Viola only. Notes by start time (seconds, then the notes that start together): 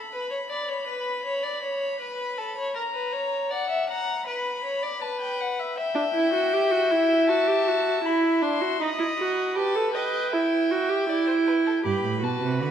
5.95 D4
6.14 E4
6.33 F#4
6.53 G4
6.71 F#4
6.91 E4
7.29 F#4
7.47 G4
7.67 F#4
8.04 E4
8.42 D4
8.61 F#4
8.80 D#4
8.99 E4
9.18 F#4
9.56 G4
9.75 A4
9.94 B4
10.33 E4
10.71 F#4
10.89 G4
11.09 E4
11.85 G4
12.22 F#4